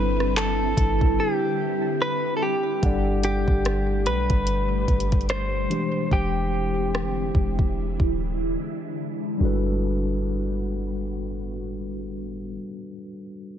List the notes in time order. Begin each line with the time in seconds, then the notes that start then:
Already playing: G1 D3 G3 C4 D4 E4 A4 B4
0.20 cross-stick
0.36 A4, clap, closed hi-hat
0.77 G1, kick, closed hi-hat
1.01 G1, kick
1.20 G4
2.02 B4
2.37 A4
2.42 G4
2.82 G1 B2 G3 A3 D4 G4 A4 D5 F#5, kick, closed hi-hat
3.23 G4, closed hi-hat
3.48 G1, kick
3.65 cross-stick, closed hi-hat
4.06 B1 B4, closed hi-hat
4.30 G1, kick, closed hi-hat
4.47 closed hi-hat
4.88 G1, kick, closed hi-hat
5.00 closed hi-hat
5.12 kick, closed hi-hat
5.21 closed hi-hat
5.29 C5, cross-stick, closed hi-hat
5.69 D3 E3 G#3 C4 D4 E4 G4 C5, closed hi-hat
6.11 E1 G4, kick
6.95 cross-stick
7.34 E1 D4, kick
7.59 kick
8.00 D1, kick
9.37 G1 A2 G3 B3 D4 F#4
9.43 A4 B4